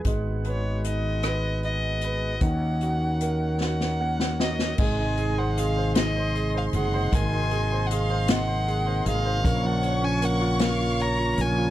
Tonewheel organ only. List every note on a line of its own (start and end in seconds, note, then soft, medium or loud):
0.00 2.36 G#3 soft
0.00 2.36 B3 soft
0.05 4.74 D#3 medium
0.05 4.74 F#4 medium
2.40 4.75 A#3 medium
2.40 4.76 C#4 medium
4.78 9.40 C3 medium
4.78 9.40 D#3 medium
4.78 7.10 G#3 medium
4.78 9.40 D#4 medium
7.12 11.70 A#3 medium
9.43 11.70 C#3 medium
9.43 11.70 F3 medium
9.43 11.70 C#4 medium